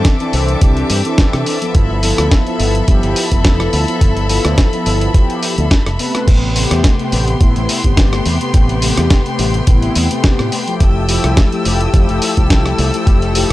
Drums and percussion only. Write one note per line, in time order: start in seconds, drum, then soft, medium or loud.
0.05 kick loud
0.05 snare loud
0.05 closed hi-hat medium
0.20 closed hi-hat soft
0.33 open hi-hat medium
0.48 closed hi-hat soft
0.61 kick loud
0.61 closed hi-hat medium
0.77 closed hi-hat soft
0.90 open hi-hat loud
1.05 closed hi-hat medium
1.18 kick loud
1.18 snare loud
1.18 closed hi-hat medium
1.33 cross-stick medium
1.33 closed hi-hat soft
1.46 open hi-hat medium
1.62 closed hi-hat medium
1.75 kick loud
1.75 closed hi-hat medium
2.03 open hi-hat loud
2.18 cross-stick medium
2.18 closed hi-hat medium
2.31 kick loud
2.31 snare loud
2.31 closed hi-hat medium
2.47 closed hi-hat soft
2.60 open hi-hat medium
2.75 closed hi-hat medium
2.88 kick loud
2.88 closed hi-hat medium
3.03 closed hi-hat soft
3.16 open hi-hat loud
3.32 kick medium
3.32 closed hi-hat medium
3.45 kick loud
3.45 snare loud
3.45 closed hi-hat medium
3.60 cross-stick medium
3.60 closed hi-hat soft
3.73 open hi-hat medium
3.88 closed hi-hat medium
4.01 kick loud
4.01 closed hi-hat medium
4.17 closed hi-hat soft
4.29 open hi-hat loud
4.45 cross-stick medium
4.45 closed hi-hat medium
4.58 kick loud
4.58 snare loud
4.58 closed hi-hat medium
4.73 closed hi-hat soft
4.86 open hi-hat medium
5.01 closed hi-hat medium
5.14 kick loud
5.14 closed hi-hat medium
5.30 closed hi-hat soft
5.43 open hi-hat loud
5.58 closed hi-hat medium
5.71 kick loud
5.71 snare loud
5.71 closed hi-hat medium
5.86 cross-stick medium
5.86 closed hi-hat soft
5.99 open hi-hat medium
6.15 cross-stick medium
6.15 closed hi-hat medium
6.28 kick loud
6.28 closed hi-hat medium
6.28 crash medium
6.56 open hi-hat loud
6.71 cross-stick medium
6.71 closed hi-hat medium
6.84 kick loud
6.84 snare loud
6.84 closed hi-hat medium
6.99 closed hi-hat soft
7.12 open hi-hat loud
7.28 closed hi-hat soft
7.41 kick loud
7.41 closed hi-hat medium
7.56 closed hi-hat soft
7.69 open hi-hat loud
7.84 kick medium
7.84 closed hi-hat medium
7.97 kick loud
7.97 snare loud
7.97 closed hi-hat medium
8.13 cross-stick medium
8.13 closed hi-hat soft
8.26 open hi-hat medium
8.41 closed hi-hat medium
8.54 kick loud
8.54 closed hi-hat medium
8.69 closed hi-hat soft
8.82 open hi-hat loud
8.97 cross-stick medium
8.97 closed hi-hat medium
9.10 kick loud
9.10 snare loud
9.10 closed hi-hat medium
9.26 closed hi-hat soft
9.39 open hi-hat loud
9.54 closed hi-hat soft
9.67 kick loud
9.67 closed hi-hat medium
9.82 closed hi-hat soft
9.96 open hi-hat loud
10.11 closed hi-hat medium
10.24 kick loud
10.24 snare loud
10.24 closed hi-hat medium
10.39 cross-stick medium
10.39 closed hi-hat soft
10.52 open hi-hat medium
10.68 closed hi-hat medium
10.80 kick loud
10.80 closed hi-hat medium
11.09 open hi-hat loud
11.24 cross-stick medium
11.24 closed hi-hat medium
11.37 kick loud
11.37 snare loud
11.37 closed hi-hat medium
11.52 closed hi-hat soft
11.65 open hi-hat loud
11.81 closed hi-hat medium
11.94 kick loud
11.94 closed hi-hat medium
12.09 closed hi-hat soft
12.22 open hi-hat loud
12.37 kick medium
12.37 closed hi-hat medium
12.50 kick loud
12.50 snare loud
12.50 closed hi-hat medium
12.66 cross-stick medium
12.66 closed hi-hat soft
12.78 open hi-hat medium
12.94 closed hi-hat soft
13.07 kick loud
13.07 closed hi-hat medium
13.22 closed hi-hat soft
13.35 open hi-hat loud